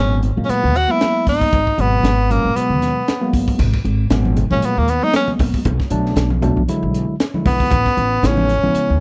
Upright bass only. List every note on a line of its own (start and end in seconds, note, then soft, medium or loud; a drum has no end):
0.00 0.30 G#1 medium
0.37 0.47 G#1 medium
0.49 muted upright bass stroke soft
0.63 0.85 D#2 medium
1.27 1.39 G#1 medium
1.53 1.64 G#1 medium
1.78 1.99 G#1 medium
2.03 2.37 G#1 medium
2.44 2.53 G#1 medium
2.55 muted upright bass stroke soft
2.70 2.91 D#2 medium
3.33 3.45 G#1 medium
3.59 3.71 G#1 medium
3.85 4.06 G#1 medium
4.10 4.44 G#1 medium
4.50 4.60 G#1 medium
4.62 muted upright bass stroke soft
4.77 4.98 D#2 medium
5.40 5.51 A#1 medium
5.65 5.77 B1 medium
5.91 6.12 B1 medium
6.16 6.49 B1 loud
6.57 6.66 B1 medium
6.68 muted upright bass stroke soft
6.83 7.04 B1 medium
7.46 7.58 B1 medium
7.71 7.83 A1 medium
7.97 8.18 A1 medium
8.23 8.56 A1 medium
8.63 8.73 A1 medium
8.75 muted upright bass stroke soft
8.90 9.00 E2 medium